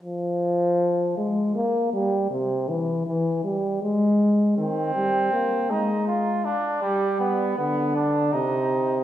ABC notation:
X:1
M:3/4
L:1/8
Q:1/4=80
K:Cphr
V:1 name="Flugelhorn"
z6 | z6 | C3 E F =D | G, =B, B, =D E2 |]
V:2 name="Euphonium" clef=bass
F,3 A, B, G, | C, =E, E, G, A,2 | E, G, B, A,2 z | G,2 =D,2 C,2 |]